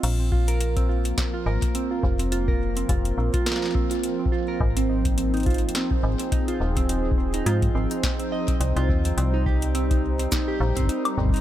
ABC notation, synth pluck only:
X:1
M:4/4
L:1/16
Q:"Swing 16ths" 1/4=105
K:Bbmix
V:1 name="Synth pluck"
z C F B z C F z C F B z C F z C | F B z C F z C F B z C F z C F B | z C E z C E F z C E z C E F z C | E z C E F z C E z C e C z F C C |
C E G z C E z C E G z C E z C E |]